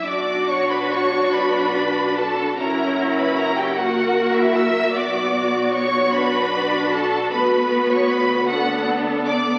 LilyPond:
<<
  \new Staff \with { instrumentName = "Violin section" } { \time 6/8 \key b \minor \tempo 4. = 51 d'''8 cis'''16 b''16 cis'''8 b''4 a''8 | ais''8. b''16 ais''16 g''16 fis''8. e''16 e'''8 | d'''4 cis'''8 b''4 a''8 | b''8. cis'''16 b''8 fis''8 r8 d'''8 | }
  \new Staff \with { instrumentName = "Violin section" } { \time 6/8 \key b \minor d''8 cis''16 b'16 cis''8 b'4 a'8 | ais'8. b'16 ais'16 g'16 fis'8. e'16 e''8 | d''4 cis''8 b'4 a'8 | b'8. cis''16 b'8 fis'8 r8 d''8 | }
  \new Staff \with { instrumentName = "Cello section" } { \time 6/8 \key b \minor fis'4. d'4. | fis'4. ais'4. | fis'2. | b'4. a'4. | }
  \new Staff \with { instrumentName = "Viola section" } { \time 6/8 \key b \minor << { fis'2. | e'4. fis'4. | fis'2. | fis'4. d'4. | } \\ { d'2. | cis'4. ais4. | b4. d'4. | b4. b4. | } >> }
  \new Staff \with { instrumentName = "Double bass section" } { \clef bass \time 6/8 \key b \minor b,,2. | fis,,2. | b,,2. | d,2. | }
>>